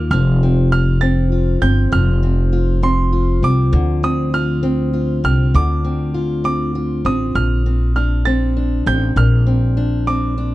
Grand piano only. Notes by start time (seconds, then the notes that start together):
0.11 F6
0.72 F6
1.01 A6
1.62 G6
1.93 F6
2.83 C6
3.44 D6
4.04 D#6
4.34 F6
5.25 F6
5.55 D6
6.45 D6
7.06 D#6
7.36 F6
7.96 F6
8.25 A6
8.87 G6
9.17 F6
10.07 D6